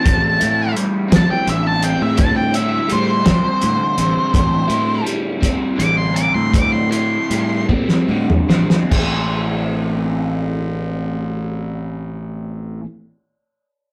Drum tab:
CC |------------|------------|------------|------------|
HH |x-x-x-x-x-x-|x-x-x-x-x-x-|x-x-x-x-x-x-|x-x-x-------|
SD |------o-----|------o-----|------------|-------o--oo|
T1 |------------|------------|------------|------o-----|
T2 |------------|------------|------------|---------o--|
BD |o-----o-----|o-----o-----|o-----o-----|o-----o-----|

CC |x-----------|------------|
HH |------------|------------|
SD |------------|------------|
T1 |------------|------------|
T2 |------------|------------|
BD |o-----------|------------|